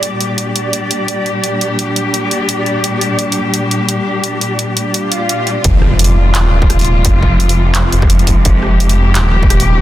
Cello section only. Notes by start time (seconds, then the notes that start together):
0.03 A#2 G3 D4 G4
5.64 C3 F3 G#3 F4
8.45 G4